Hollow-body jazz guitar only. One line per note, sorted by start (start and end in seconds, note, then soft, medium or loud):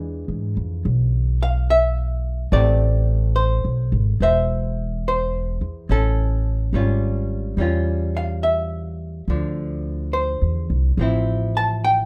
0.00 2.52 E3 soft
0.00 2.52 G#3 soft
0.00 2.52 D4 soft
0.00 2.52 F4 soft
1.43 1.69 F5 medium
1.70 2.49 E5 medium
2.52 5.89 A3 soft
2.52 5.89 C4 soft
2.52 5.90 G4 soft
2.52 3.32 D5 medium
3.36 4.16 C5 medium
4.22 5.07 C5 soft
4.22 5.08 E5 medium
5.08 5.91 C5 medium
5.91 6.74 C#4 soft
5.91 6.71 A4 medium
6.74 7.57 G3 soft
6.74 7.59 C#4 soft
6.74 7.60 F4 soft
7.58 9.28 G3 soft
7.58 9.29 C#4 soft
7.58 9.29 F4 soft
8.17 8.43 F5 medium
8.43 9.24 E5 medium
9.30 12.05 D3 soft
9.30 10.98 F3 soft
10.13 10.99 C5 medium
10.99 12.05 F3 soft
10.99 12.05 C4 soft
10.99 12.05 E4 soft
11.57 11.84 A5 medium
11.84 12.05 G5 medium